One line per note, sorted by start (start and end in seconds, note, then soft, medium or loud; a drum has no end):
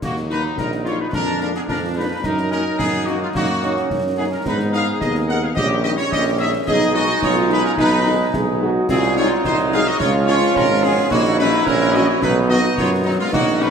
0.01 0.48 D#2 medium
0.01 1.09 F#3 loud
0.01 0.14 A#3 loud
0.01 1.09 D#4 loud
0.01 0.15 F#4 loud
0.01 concert bass drum medium
0.01 snare medium
0.01 crash medium
0.17 snare medium
0.29 0.39 F#3 medium
0.29 0.40 A#3 medium
0.29 0.39 D#4 medium
0.29 0.55 D#4 loud
0.29 0.43 B4 loud
0.29 snare medium
0.57 1.04 A#1 medium
0.57 0.69 D#4 medium
0.57 1.09 D#4 medium
0.57 0.71 A#4 loud
0.57 concert bass drum medium
0.57 snare medium
0.72 snare medium
0.85 0.96 F#3 medium
0.85 0.96 A#3 medium
0.85 0.96 D#4 medium
0.85 0.98 F4 loud
0.85 0.99 C#5 loud
0.85 snare medium
0.99 1.06 D#4 medium
0.99 1.14 B4 medium
1.13 1.59 F2 medium
1.13 2.20 G#3 medium
1.13 1.70 D4 loud
1.13 2.24 D4 medium
1.13 1.39 D4 loud
1.13 1.40 A#4 loud
1.13 concert bass drum medium
1.13 snare medium
1.41 1.51 G#3 medium
1.41 1.51 A#3 medium
1.41 1.51 D4 medium
1.41 1.48 D4 loud
1.41 1.47 A#4 loud
1.41 snare medium
1.54 1.61 B3 medium
1.54 1.61 G#4 loud
1.54 snare medium
1.68 2.14 F2 medium
1.68 1.95 D4 loud
1.68 2.23 F4 medium
1.68 1.80 A#4 loud
1.68 concert bass drum medium
1.68 snare medium
1.96 2.07 G#3 medium
1.96 2.07 A#3 medium
1.96 2.07 D4 medium
1.96 2.22 D#4 medium
1.96 2.22 B4 loud
2.23 2.70 F#2 loud
2.23 4.46 F#3 medium
2.23 2.36 D#4 loud
2.23 3.31 D#4 loud
2.23 4.42 D#4 loud
2.23 2.50 A#4 loud
2.23 concert bass drum medium
2.23 snare medium
2.23 crash soft
2.38 snare medium
2.50 2.61 F#3 medium
2.50 2.62 A#3 medium
2.50 2.63 C#4 loud
2.50 2.61 D#4 medium
2.50 2.78 A#4 loud
2.50 snare medium
2.79 3.26 F#2 medium
2.79 3.05 B3 loud
2.79 3.05 G#4 loud
2.79 concert bass drum medium
2.79 snare medium
2.93 snare medium
3.06 3.17 F#3 medium
3.06 3.20 A#3 medium
3.06 3.17 A#3 medium
3.06 3.17 D#4 medium
3.06 3.21 F#4 loud
3.06 snare medium
3.20 3.27 G#3 medium
3.20 3.27 F4 loud
3.33 3.81 F#2 loud
3.33 3.86 A#3 loud
3.33 3.47 D#4 loud
3.33 3.87 F#4 loud
3.33 concert bass drum medium
3.33 snare medium
3.63 3.73 F#3 medium
3.63 3.73 A#3 medium
3.63 4.42 C#4 loud
3.63 3.73 D#4 medium
3.63 snare medium
3.77 snare medium
3.90 4.36 F#2 medium
3.90 concert bass drum medium
3.90 snare medium
4.17 4.29 F#3 medium
4.17 4.29 A#3 medium
4.17 4.24 B3 medium
4.17 4.29 D#4 medium
4.17 4.24 G#4 loud
4.32 4.39 C#4 medium
4.32 4.45 A#4 medium
4.45 4.92 G#2 loud
4.45 5.57 G#3 loud
4.45 4.98 B3 loud
4.45 4.72 D#4 loud
4.45 5.54 D#4 loud
4.45 4.58 B4 loud
4.45 concert bass drum medium
4.45 snare medium
4.45 crash soft
4.60 snare medium
4.73 4.84 D#3 medium
4.73 4.85 G#3 medium
4.73 4.85 D#4 medium
4.73 4.99 G#4 loud
4.73 4.86 F5 loud
4.73 snare medium
5.01 5.47 D#2 loud
5.01 5.58 B3 medium
5.01 5.27 G#4 loud
5.01 5.13 D#5 loud
5.01 concert bass drum medium
5.01 snare medium
5.15 snare medium
5.29 5.39 D#3 medium
5.29 5.39 G#3 medium
5.29 5.39 D#4 medium
5.29 5.43 A#4 loud
5.29 5.42 F#5 loud
5.29 snare medium
5.42 5.49 G#4 loud
5.42 5.57 F5 loud
5.55 5.98 A#1 loud
5.55 6.50 G3 loud
5.55 6.68 C#4 loud
5.55 6.50 C#4 loud
5.55 5.82 G4 loud
5.55 5.68 D#5 loud
5.55 concert bass drum medium
5.55 snare medium
5.83 5.94 D#3 medium
5.83 5.94 G3 medium
5.83 5.94 D#4 medium
5.83 5.90 G4 loud
5.83 5.90 D#5 loud
5.83 snare medium
5.97 6.04 E4 medium
5.97 6.10 C#5 loud
5.97 snare medium
6.11 6.58 A#1 loud
6.11 6.37 G4 loud
6.11 6.24 D#5 loud
6.11 concert bass drum medium
6.11 snare medium
6.38 6.50 D#3 medium
6.38 6.50 G3 medium
6.38 6.50 D#4 medium
6.38 6.51 G#4 loud
6.38 6.52 E5 loud
6.66 7.14 B1 loud
6.66 8.86 G#3 loud
6.66 8.86 D#4 loud
6.66 7.02 D#4 loud
6.66 6.93 G#4 loud
6.66 6.93 D#5 loud
6.66 concert bass drum loud
6.66 snare medium
6.66 crash soft
6.82 snare medium
6.94 7.05 D#3 medium
6.94 7.05 G#3 medium
6.94 7.06 D#4 medium
6.94 7.21 F#4 loud
6.94 7.21 D#5 loud
6.94 snare medium
7.22 7.69 B1 loud
7.22 7.51 F4 loud
7.22 7.75 F4 loud
7.22 7.36 C#5 loud
7.22 concert bass drum medium
7.22 snare medium
7.36 snare medium
7.50 7.60 D#3 medium
7.50 7.60 G#3 medium
7.50 7.60 D#4 medium
7.50 7.58 D#4 loud
7.50 7.64 B4 loud
7.50 snare medium
7.64 7.70 C#4 loud
7.64 7.71 A#4 loud
7.78 8.24 B1 loud
7.78 8.30 D#4 loud
7.78 8.36 D#4 loud
7.78 8.30 B4 loud
7.78 concert bass drum medium
7.78 snare medium
8.06 8.16 D#3 medium
8.06 8.16 G#3 loud
8.06 8.16 D#4 loud
8.34 8.80 B1 loud
8.34 8.61 G#4 loud
8.34 concert bass drum loud
8.34 snare medium
8.60 8.71 D#3 loud
8.60 8.71 G#3 loud
8.60 8.71 D#4 loud
8.60 8.90 F#4 loud
8.88 9.35 C2 loud
8.88 9.96 F#3 loud
8.88 9.02 C4 loud
8.88 9.97 D#4 loud
8.88 9.44 F4 loud
8.88 9.15 G#4 loud
8.88 concert bass drum medium
8.88 snare medium
8.88 crash medium
9.03 snare medium
9.15 9.27 F#3 medium
9.15 9.27 G#3 loud
9.15 9.27 D#4 loud
9.15 9.30 F4 loud
9.15 9.28 C#5 loud
9.15 snare medium
9.44 9.91 C2 loud
9.44 9.96 D#4 loud
9.44 9.57 D#4 loud
9.44 9.57 C5 loud
9.44 concert bass drum medium
9.44 snare medium
9.58 snare medium
9.72 9.82 F#3 loud
9.72 9.83 G#3 loud
9.72 9.83 D#4 loud
9.72 9.86 G#4 loud
9.72 9.85 F5 loud
9.72 snare medium
9.86 9.99 F#4 loud
9.86 10.00 D#5 loud
9.99 10.46 C#2 loud
9.99 11.11 F3 loud
9.99 11.13 C#4 loud
9.99 11.11 F4 loud
9.99 10.13 F4 loud
9.99 10.12 C#5 loud
9.99 concert bass drum medium
9.99 snare medium
10.26 10.38 F3 loud
10.26 10.38 G#3 loud
10.26 10.38 C#4 loud
10.26 10.53 F4 loud
10.26 10.53 C#5 loud
10.26 snare medium
10.42 snare medium
10.54 11.02 G#1 loud
10.54 10.67 C#4 loud
10.54 10.83 A#4 loud
10.54 concert bass drum medium
10.54 snare medium
10.82 10.93 F3 loud
10.82 10.93 G#3 loud
10.82 11.10 B3 loud
10.82 10.93 C#4 loud
10.82 11.11 G#4 loud
11.10 11.57 A#1 loud
11.10 13.16 F#3 loud
11.10 11.24 A#3 loud
11.10 11.66 D#4 loud
11.10 12.22 E4 loud
11.10 11.36 F#4 loud
11.10 concert bass drum medium
11.10 snare medium
11.10 crash soft
11.25 snare medium
11.38 11.48 E3 medium
11.38 11.49 F#3 loud
11.38 11.48 C#4 loud
11.38 11.66 D#4 loud
11.38 11.64 B4 loud
11.38 snare medium
11.66 12.13 A#1 loud
11.66 12.23 C#4 loud
11.66 11.95 C#4 loud
11.66 11.94 A#4 loud
11.66 concert bass drum medium
11.66 snare medium
11.81 snare medium
11.93 12.04 E3 loud
11.93 12.04 F#3 loud
11.93 12.04 C#4 loud
11.93 12.01 F#4 loud
11.93 12.08 D#5 loud
11.93 snare medium
12.07 12.14 E4 loud
12.07 12.22 C#5 loud
12.21 12.68 B1 loud
12.21 13.32 B3 loud
12.21 12.34 D#4 loud
12.21 13.16 D#4 loud
12.21 12.34 B4 loud
12.21 concert bass drum medium
12.21 snare medium
12.49 12.59 D#3 loud
12.49 12.60 F#3 loud
12.49 12.59 B3 loud
12.49 12.63 F#4 loud
12.49 12.75 D#5 loud
12.49 snare medium
12.64 snare medium
12.76 13.19 F#2 loud
12.76 12.91 F4 loud
12.76 12.89 C#5 loud
12.76 concert bass drum medium
12.76 snare medium
13.04 13.15 D#3 medium
13.04 13.15 F#3 medium
13.04 13.18 F#3 loud
13.04 13.15 B3 medium
13.04 13.11 D#4 loud
13.19 13.26 G#3 loud
13.19 13.32 F4 loud
13.32 13.70 A#1 loud
13.32 13.70 F#3 loud
13.32 13.46 A#3 loud
13.32 13.70 C#4 loud
13.32 13.66 D#4 loud
13.32 13.59 F#4 loud
13.32 concert bass drum loud
13.32 snare medium
13.32 crash soft
13.48 snare medium
13.60 13.70 C#3 medium
13.60 13.70 F#3 medium
13.60 13.70 C#4 medium
13.60 13.70 D#4 loud
13.60 13.70 B4 loud
13.60 snare medium